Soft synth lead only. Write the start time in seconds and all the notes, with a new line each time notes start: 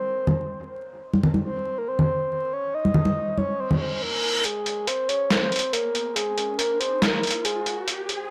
Already playing: C5
1.45 C5
1.78 A#4
1.88 C5
2.32 C5
2.53 C#5
2.74 D#5
3.38 C#5
3.60 C5
3.76 C#5
3.81 C5
3.96 C5
4.02 A#4
4.45 G#4
4.87 C5
5.08 C#5
5.30 C5
5.72 A#4
6.15 G#4
6.58 A#4
6.80 C5
7.01 A#4
7.45 G#4